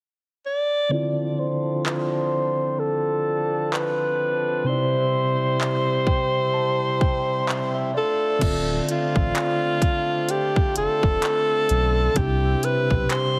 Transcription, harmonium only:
0, 0, Header, 1, 2, 480
1, 0, Start_track
1, 0, Tempo, 937500
1, 470, Time_signature, 4, 2, 24, 8
1, 6858, End_track
2, 0, Start_track
2, 0, Title_t, "Harmonium"
2, 0, Program_c, 0, 20
2, 469, Note_on_c, 0, 60, 58
2, 469, Note_on_c, 0, 62, 60
2, 470, Note_on_c, 0, 53, 68
2, 470, Note_on_c, 0, 69, 73
2, 2370, Note_off_c, 0, 62, 0
2, 2371, Note_off_c, 0, 53, 0
2, 2371, Note_off_c, 0, 69, 0
2, 2388, Note_on_c, 0, 64, 63
2, 2388, Note_on_c, 0, 72, 78
2, 2389, Note_on_c, 0, 55, 69
2, 4049, Note_off_c, 0, 60, 0
2, 4052, Note_off_c, 0, 55, 0
2, 4052, Note_off_c, 0, 64, 0
2, 4052, Note_off_c, 0, 72, 0
2, 4069, Note_on_c, 0, 62, 61
2, 4069, Note_on_c, 0, 72, 76
2, 4070, Note_on_c, 0, 65, 61
2, 4071, Note_on_c, 0, 57, 63
2, 4304, Note_off_c, 0, 62, 0
2, 4305, Note_off_c, 0, 57, 0
2, 4305, Note_off_c, 0, 65, 0
2, 4307, Note_off_c, 0, 72, 0
2, 4312, Note_on_c, 0, 62, 65
2, 4312, Note_on_c, 0, 65, 74
2, 4313, Note_on_c, 0, 57, 65
2, 4313, Note_on_c, 0, 60, 67
2, 6212, Note_off_c, 0, 57, 0
2, 6212, Note_off_c, 0, 62, 0
2, 6212, Note_off_c, 0, 65, 0
2, 6229, Note_on_c, 0, 55, 66
2, 6231, Note_on_c, 0, 64, 76
2, 6858, Note_off_c, 0, 55, 0
2, 6858, Note_off_c, 0, 60, 0
2, 6858, Note_off_c, 0, 64, 0
2, 6858, End_track
0, 0, End_of_file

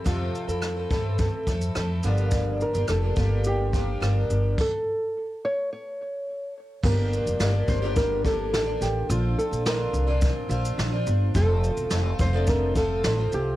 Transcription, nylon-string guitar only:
0, 0, Header, 1, 2, 480
1, 0, Start_track
1, 0, Tempo, 564440
1, 50, Time_signature, 4, 2, 24, 8
1, 11532, End_track
2, 0, Start_track
2, 0, Title_t, "Nylon-string guitar"
2, 0, Program_c, 0, 24
2, 57, Note_on_c, 0, 65, 81
2, 772, Note_on_c, 0, 69, 80
2, 796, Note_off_c, 0, 65, 0
2, 995, Note_off_c, 0, 69, 0
2, 1017, Note_on_c, 0, 69, 82
2, 1701, Note_off_c, 0, 69, 0
2, 2229, Note_on_c, 0, 70, 70
2, 2461, Note_off_c, 0, 70, 0
2, 2465, Note_on_c, 0, 69, 81
2, 2906, Note_off_c, 0, 69, 0
2, 2948, Note_on_c, 0, 67, 82
2, 3913, Note_off_c, 0, 67, 0
2, 3916, Note_on_c, 0, 69, 90
2, 4591, Note_off_c, 0, 69, 0
2, 4632, Note_on_c, 0, 73, 101
2, 4859, Note_off_c, 0, 73, 0
2, 4869, Note_on_c, 0, 73, 88
2, 5548, Note_off_c, 0, 73, 0
2, 5826, Note_on_c, 0, 70, 93
2, 6532, Note_off_c, 0, 70, 0
2, 6536, Note_on_c, 0, 72, 94
2, 6773, Note_off_c, 0, 72, 0
2, 6777, Note_on_c, 0, 70, 99
2, 7020, Note_off_c, 0, 70, 0
2, 7023, Note_on_c, 0, 69, 86
2, 7242, Note_off_c, 0, 69, 0
2, 7259, Note_on_c, 0, 69, 96
2, 7499, Note_on_c, 0, 67, 97
2, 7503, Note_off_c, 0, 69, 0
2, 7741, Note_off_c, 0, 67, 0
2, 7744, Note_on_c, 0, 65, 93
2, 7981, Note_on_c, 0, 69, 82
2, 7985, Note_off_c, 0, 65, 0
2, 8219, Note_off_c, 0, 69, 0
2, 8222, Note_on_c, 0, 70, 92
2, 9382, Note_off_c, 0, 70, 0
2, 9660, Note_on_c, 0, 69, 102
2, 10153, Note_off_c, 0, 69, 0
2, 10153, Note_on_c, 0, 67, 102
2, 10341, Note_off_c, 0, 67, 0
2, 10382, Note_on_c, 0, 72, 97
2, 10618, Note_off_c, 0, 72, 0
2, 10621, Note_on_c, 0, 70, 97
2, 10855, Note_off_c, 0, 70, 0
2, 10858, Note_on_c, 0, 69, 93
2, 11077, Note_off_c, 0, 69, 0
2, 11102, Note_on_c, 0, 69, 91
2, 11342, Note_off_c, 0, 69, 0
2, 11345, Note_on_c, 0, 67, 93
2, 11532, Note_off_c, 0, 67, 0
2, 11532, End_track
0, 0, End_of_file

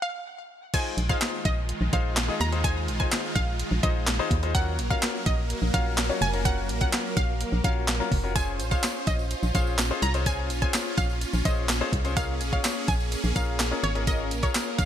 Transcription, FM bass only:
0, 0, Header, 1, 2, 480
1, 0, Start_track
1, 0, Tempo, 476190
1, 744, Time_signature, 4, 2, 24, 8
1, 14972, End_track
2, 0, Start_track
2, 0, Title_t, "FM bass"
2, 0, Program_c, 0, 39
2, 982, Note_on_c, 0, 34, 89
2, 1170, Note_off_c, 0, 34, 0
2, 1465, Note_on_c, 0, 34, 94
2, 1745, Note_off_c, 0, 34, 0
2, 1823, Note_on_c, 0, 34, 97
2, 1917, Note_off_c, 0, 34, 0
2, 1945, Note_on_c, 0, 34, 98
2, 2319, Note_off_c, 0, 34, 0
2, 2424, Note_on_c, 0, 39, 109
2, 2905, Note_on_c, 0, 34, 89
2, 2920, Note_off_c, 0, 39, 0
2, 3092, Note_off_c, 0, 34, 0
2, 3385, Note_on_c, 0, 34, 97
2, 3665, Note_off_c, 0, 34, 0
2, 3743, Note_on_c, 0, 34, 104
2, 3837, Note_off_c, 0, 34, 0
2, 3865, Note_on_c, 0, 34, 103
2, 4239, Note_off_c, 0, 34, 0
2, 4343, Note_on_c, 0, 39, 107
2, 4825, Note_on_c, 0, 34, 93
2, 4840, Note_off_c, 0, 39, 0
2, 5012, Note_off_c, 0, 34, 0
2, 5305, Note_on_c, 0, 34, 100
2, 5586, Note_off_c, 0, 34, 0
2, 5665, Note_on_c, 0, 34, 96
2, 5758, Note_off_c, 0, 34, 0
2, 5786, Note_on_c, 0, 34, 96
2, 6160, Note_off_c, 0, 34, 0
2, 6263, Note_on_c, 0, 29, 109
2, 6744, Note_on_c, 0, 34, 96
2, 6759, Note_off_c, 0, 29, 0
2, 6931, Note_off_c, 0, 34, 0
2, 7226, Note_on_c, 0, 34, 100
2, 7506, Note_off_c, 0, 34, 0
2, 7584, Note_on_c, 0, 34, 103
2, 7678, Note_off_c, 0, 34, 0
2, 7705, Note_on_c, 0, 34, 99
2, 8079, Note_off_c, 0, 34, 0
2, 8181, Note_on_c, 0, 29, 112
2, 8664, Note_on_c, 0, 34, 94
2, 8679, Note_off_c, 0, 29, 0
2, 8851, Note_off_c, 0, 34, 0
2, 9144, Note_on_c, 0, 34, 98
2, 9425, Note_off_c, 0, 34, 0
2, 9504, Note_on_c, 0, 34, 99
2, 9597, Note_off_c, 0, 34, 0
2, 9624, Note_on_c, 0, 34, 105
2, 9999, Note_off_c, 0, 34, 0
2, 10104, Note_on_c, 0, 36, 108
2, 10584, Note_on_c, 0, 34, 90
2, 10599, Note_off_c, 0, 36, 0
2, 10771, Note_off_c, 0, 34, 0
2, 11065, Note_on_c, 0, 34, 102
2, 11345, Note_off_c, 0, 34, 0
2, 11426, Note_on_c, 0, 34, 104
2, 11519, Note_off_c, 0, 34, 0
2, 11545, Note_on_c, 0, 34, 100
2, 11919, Note_off_c, 0, 34, 0
2, 12022, Note_on_c, 0, 36, 111
2, 12506, Note_on_c, 0, 34, 93
2, 12521, Note_off_c, 0, 36, 0
2, 12692, Note_off_c, 0, 34, 0
2, 12986, Note_on_c, 0, 34, 100
2, 13266, Note_off_c, 0, 34, 0
2, 13346, Note_on_c, 0, 34, 103
2, 13439, Note_off_c, 0, 34, 0
2, 13466, Note_on_c, 0, 34, 99
2, 13840, Note_off_c, 0, 34, 0
2, 13946, Note_on_c, 0, 32, 113
2, 14426, Note_on_c, 0, 34, 89
2, 14441, Note_off_c, 0, 32, 0
2, 14612, Note_off_c, 0, 34, 0
2, 14906, Note_on_c, 0, 34, 99
2, 14972, Note_off_c, 0, 34, 0
2, 14972, End_track
0, 0, End_of_file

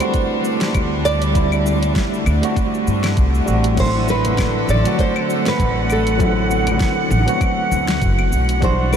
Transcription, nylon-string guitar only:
0, 0, Header, 1, 2, 480
1, 0, Start_track
1, 0, Tempo, 606061
1, 1069, Time_signature, 4, 2, 24, 8
1, 7103, End_track
2, 0, Start_track
2, 0, Title_t, "Nylon-string guitar"
2, 0, Program_c, 0, 24
2, 0, Note_on_c, 0, 72, 97
2, 804, Note_off_c, 0, 72, 0
2, 832, Note_on_c, 0, 74, 109
2, 2719, Note_off_c, 0, 74, 0
2, 3008, Note_on_c, 0, 72, 100
2, 3244, Note_off_c, 0, 72, 0
2, 3247, Note_on_c, 0, 71, 102
2, 3687, Note_off_c, 0, 71, 0
2, 3724, Note_on_c, 0, 74, 106
2, 3940, Note_off_c, 0, 74, 0
2, 3961, Note_on_c, 0, 72, 109
2, 4336, Note_off_c, 0, 72, 0
2, 4339, Note_on_c, 0, 71, 100
2, 4687, Note_off_c, 0, 71, 0
2, 4689, Note_on_c, 0, 69, 88
2, 5368, Note_off_c, 0, 69, 0
2, 6838, Note_on_c, 0, 72, 91
2, 7057, Note_off_c, 0, 72, 0
2, 7075, Note_on_c, 0, 71, 92
2, 7103, Note_off_c, 0, 71, 0
2, 7103, End_track
0, 0, End_of_file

